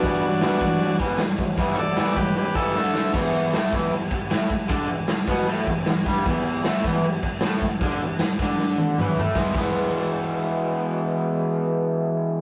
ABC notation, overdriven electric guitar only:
X:1
M:4/4
L:1/8
Q:1/4=155
K:Em
V:1 name="Overdriven electric guitar" clef=bass
[E,G,B,] [E,G,] [E,G,B,] [E,G,] [E,G,] [E,G,B,] [E,G,] [E,G,] | [E,G,B,] [E,G,] [E,G,B,] [E,G,] [E,G,] [E,G,B,] [D,A,D] [D,A,D] | [E,,E,]2 [A,,A,] [E,,E,] E,, z [A,,A,] z | [D,D] E,, z [B,,B,] [A,,A,] E,, E,, [G,,G,] |
[E,,E,]2 [A,,A,] [E,,E,] E,, z [A,,A,] z | [D,D] E,, z [D,D]3 [E,,E,] [A,,A,] | [E,^G,B,E] [E,G,B,E]6- [E,G,B,E]- | [E,^G,B,E]8 |]